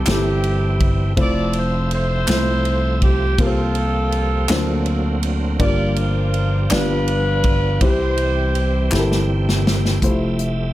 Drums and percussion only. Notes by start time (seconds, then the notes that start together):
0.06 snare, clap, ride
0.44 ride
0.80 kick, ride
1.17 kick, ride
1.53 ride
1.91 ride
2.27 snare, clap, ride
2.65 ride
3.02 kick, ride
3.38 kick, ride
3.75 ride
4.12 ride
4.48 snare, clap, ride
4.86 ride
5.23 ride
5.60 kick, ride
5.96 ride
6.34 ride
6.70 snare, clap, ride
7.08 ride
7.44 kick, ride
7.81 kick, ride
8.17 ride
8.55 ride
8.91 snare, clap
9.12 snare
9.49 snare
9.67 snare
9.85 snare
10.02 kick, closed hi-hat
10.39 closed hi-hat